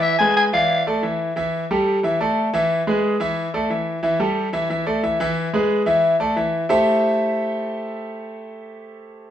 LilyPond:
<<
  \new Staff \with { instrumentName = "Soprano saxophone" } { \time 4/4 \key a \minor \tempo 4 = 180 e''8 gis''8 gis''8 f''4 r4. | r1 | r1 | r1 |
r1 | r1 | r1 | }
  \new Staff \with { instrumentName = "Grand piano" } { \time 4/4 \key a \minor <e e' e''>8 <gis gis' b'>4 <e e' d''>4 <a a' d''>8 <e e' e''>4 | <e e' e''>4 <g g' a'>4 <e e' e''>8 <a a' d''>4 <e e' e''>8~ | <e e' e''>8 <gis gis' b'>4 <e e' e''>4 <a a' d''>8 <e e' e''>4 | <e e' e''>8 <g g' a'>4 <e e' e''>8 <e e' e''>8 <a a' d''>8 <e e' e''>8 <e e' e''>8~ |
<e e' e''>8 <gis gis' b'>4 <e e' e''>4 <a a' d''>8 <e e' e''>4 | <a e' g' a' c'' e''>1~ | <a e' g' a' c'' e''>1 | }
>>